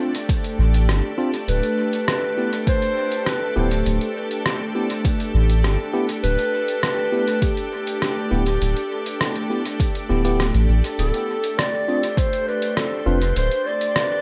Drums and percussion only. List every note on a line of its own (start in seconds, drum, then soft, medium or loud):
0.15 closed hi-hat soft
0.29 kick loud
0.29 closed hi-hat medium
0.44 closed hi-hat soft
0.74 closed hi-hat soft
0.89 cross-stick medium
0.89 closed hi-hat medium
1.34 closed hi-hat soft
1.48 closed hi-hat medium
1.63 closed hi-hat soft
1.93 closed hi-hat soft
2.08 cross-stick medium
2.08 closed hi-hat soft
2.53 closed hi-hat soft
2.67 kick loud
2.67 closed hi-hat soft
2.82 closed hi-hat soft
3.12 closed hi-hat soft
3.26 cross-stick medium
3.26 closed hi-hat medium
3.71 closed hi-hat soft
3.86 closed hi-hat medium
4.01 closed hi-hat soft
4.31 closed hi-hat soft
4.46 cross-stick medium
4.46 closed hi-hat soft
4.90 closed hi-hat soft
5.05 kick loud
5.05 closed hi-hat soft
5.20 closed hi-hat soft
5.50 closed hi-hat soft
5.64 cross-stick medium
5.64 closed hi-hat soft
6.09 closed hi-hat soft
6.24 closed hi-hat medium
6.39 closed hi-hat soft
6.68 closed hi-hat soft
6.83 cross-stick medium
6.83 closed hi-hat medium
7.28 closed hi-hat soft
7.42 kick loud
7.42 closed hi-hat medium
7.57 closed hi-hat soft
7.87 closed hi-hat soft
8.02 cross-stick medium
8.02 closed hi-hat medium
8.46 closed hi-hat soft
8.62 closed hi-hat medium
8.77 closed hi-hat soft
9.06 closed hi-hat soft
9.21 cross-stick medium
9.21 closed hi-hat medium
9.36 closed hi-hat soft
9.65 closed hi-hat soft
9.80 kick loud
9.80 closed hi-hat medium
9.95 closed hi-hat soft
10.25 closed hi-hat soft
10.40 cross-stick medium
10.40 closed hi-hat medium
10.54 closed hi-hat soft
10.84 closed hi-hat soft
10.99 closed hi-hat medium
11.14 closed hi-hat soft
11.44 closed hi-hat soft
11.59 cross-stick medium
11.59 closed hi-hat medium
12.03 closed hi-hat soft
12.17 kick loud
12.17 closed hi-hat medium
12.33 closed hi-hat soft
12.62 closed hi-hat soft
12.77 cross-stick medium
12.77 closed hi-hat medium
13.21 closed hi-hat soft
13.36 closed hi-hat medium
13.51 closed hi-hat soft
13.81 closed hi-hat soft
13.96 cross-stick medium
13.96 closed hi-hat medium